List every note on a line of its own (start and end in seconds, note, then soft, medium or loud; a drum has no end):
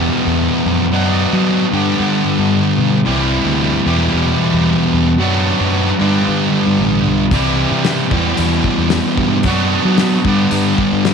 0.00 0.92 E2 medium
0.00 0.93 B2 medium
0.00 0.91 E3 medium
0.00 0.92 G3 medium
0.00 0.91 B3 medium
0.00 0.94 G4 medium
0.26 0.48 E2 medium
0.66 0.93 F2 medium
0.91 1.25 F#2 medium
0.91 1.72 F#3 medium
0.91 1.73 B3 medium
0.91 1.73 D4 medium
0.91 1.74 F#4 medium
1.33 1.65 F#3 medium
1.72 3.05 G2 medium
1.72 1.94 G2 medium
1.72 3.04 D3 medium
1.72 3.05 G3 medium
1.72 3.05 B3 medium
1.72 3.06 D4 medium
1.72 3.06 G4 medium
2.00 2.21 G2 medium
2.39 2.60 G2 medium
2.78 3.08 B2 medium
3.04 3.39 C2 medium
3.04 3.85 C3 medium
3.04 3.85 E3 medium
3.04 3.86 G3 medium
3.04 3.86 E4 medium
3.04 3.87 G4 medium
3.45 3.78 D2 medium
3.85 5.19 E2 medium
3.85 4.08 E2 medium
3.85 5.19 B2 medium
3.85 5.18 E3 medium
3.85 5.19 G3 medium
3.85 5.20 E4 medium
3.85 5.20 G4 medium
4.13 4.34 E2 medium
4.53 4.74 E2 medium
4.93 5.20 E2 medium
5.19 5.52 F#2 medium
5.19 5.99 F#3 medium
5.19 5.98 B3 medium
5.19 5.99 D4 medium
5.19 6.00 F#4 medium
5.60 5.92 F#2 medium
5.98 7.32 G2 medium
5.98 6.21 G2 medium
5.98 7.31 D3 medium
5.98 7.32 G3 medium
5.98 7.32 B3 medium
5.98 7.33 D4 medium
5.98 7.33 G4 medium
6.28 6.48 G2 medium
6.66 6.77 G2 medium
6.79 7.03 A1 medium
7.05 7.32 B1 medium
7.31 7.64 C2 medium
7.31 8.11 C3 medium
7.31 8.12 E3 medium
7.31 8.11 G3 medium
7.31 8.12 E4 medium
7.31 8.13 G4 medium
7.31 kick medium
7.31 open hi-hat soft
7.71 8.04 C3 medium
7.85 snare medium
7.85 open hi-hat soft
8.11 9.45 E2 medium
8.11 8.33 E2 medium
8.11 9.45 B2 medium
8.11 9.45 E3 medium
8.11 9.45 G3 medium
8.11 9.46 E4 medium
8.11 9.46 G4 medium
8.11 kick loud
8.37 8.60 E2 medium
8.37 open hi-hat soft
8.64 kick medium
8.78 9.00 E2 medium
8.90 snare loud
8.90 open hi-hat soft
9.18 9.46 G2 medium
9.18 kick medium
9.43 9.77 F#2 medium
9.43 10.25 F#3 medium
9.43 10.25 B3 medium
9.43 10.26 D4 medium
9.43 kick medium
9.43 open hi-hat soft
9.48 10.26 F#4 medium
9.85 10.17 F#3 medium
9.98 snare loud
9.98 open hi-hat medium
10.25 10.46 G2 medium
10.25 11.14 G2 medium
10.25 11.14 D3 medium
10.25 11.14 G3 medium
10.25 11.14 B3 medium
10.25 11.14 D4 medium
10.25 11.14 G4 medium
10.25 kick loud
10.51 10.73 G2 medium
10.51 open hi-hat soft
10.78 kick medium
10.92 11.14 G2 medium
11.05 snare loud
11.05 open hi-hat medium